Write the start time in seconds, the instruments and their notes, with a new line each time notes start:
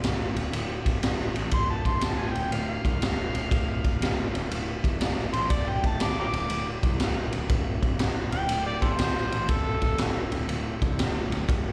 0.03 picked electric bass D1, snare, ride
0.36 picked electric bass D1, ride
0.52 picked electric bass D1, ride
0.86 picked electric bass D1, kick, ride
1.02 picked electric bass D1, snare, ride
1.20 snare
1.34 picked electric bass A1, ride
1.51 picked electric bass D1, harmonica C6, kick, ride
1.70 harmonica A5
1.85 picked electric bass D1, harmonica C6, kick, ride
2.01 picked electric bass D1, harmonica A5, snare, ride
2.19 harmonica G#5
2.33 picked electric bass D1, harmonica G5, ride
2.51 picked electric bass D1, harmonica F5, ride
2.69 harmonica F5
2.85 picked electric bass C2, kick, ride
3.02 picked electric bass D1, snare, ride
3.35 picked electric bass D1, ride
3.51 picked electric bass D1, kick, ride
3.84 picked electric bass D1, kick, ride
4.01 picked electric bass D1, snare, ride
4.35 picked electric bass D1, ride
4.51 picked electric bass D1, ride
4.84 picked electric bass D1, kick, ride
5.00 picked electric bass D1, snare, ride
5.18 snare
5.33 picked electric bass A1, harmonica C5, ride
5.50 picked electric bass D1, harmonica D5, kick, ride
5.69 harmonica G5
5.83 picked electric bass D1, harmonica A5, kick, ride
6.00 picked electric bass D1, harmonica D6, snare, ride
6.20 harmonica G5 A#5 D6
6.33 picked electric bass D1, ride
6.50 picked electric bass D1, ride
6.83 picked electric bass C2, kick, ride
7.00 picked electric bass D1, snare, ride
7.32 picked electric bass D1, ride
7.49 picked electric bass D1, kick, ride
7.82 picked electric bass D1, kick, ride
7.99 picked electric bass D1, snare, ride
8.32 picked electric bass D1, harmonica G5, ride
8.49 picked electric bass D1, ride
8.67 harmonica D5
8.82 picked electric bass D1, harmonica G4 A4 C5, kick, ride
8.98 picked electric bass D1, snare, ride
9.17 snare
9.32 picked electric bass A1, ride
9.48 picked electric bass D1, harmonica A4, kick, ride
9.82 picked electric bass D1, kick, ride
9.98 picked electric bass D1, snare, ride
10.32 picked electric bass D1, ride
10.48 picked electric bass D1, ride
10.82 picked electric bass C2, kick, ride
10.98 picked electric bass D1, snare, ride
11.30 picked electric bass D1, ride
11.49 picked electric bass D1, kick, ride